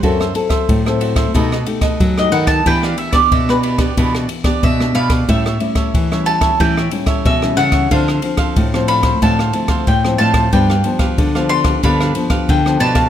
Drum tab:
RD |x-xxx-xxx-xxx-xx|x-xxx-xxx-xxx-xx|x-xxx-xxx-xxx-xx|x-xxx-xxx-xxx-xx|
SD |-r-r-r-r-r-r-r-r|-r-r-r-r-r-r-r-r|-r-r-r-r-r-r-r-r|-r-r-r-r-r-r-r-r|
BD |o--oo--oo--oo--o|o--oo--oo--oo--o|o--oo--oo--oo--o|o--oo--oo--oo--o|

RD |x-xxx-xxx-xxx-xx|
SD |-r-r-r-r-r-r-r-r|
BD |o--oo--oo--oo--o|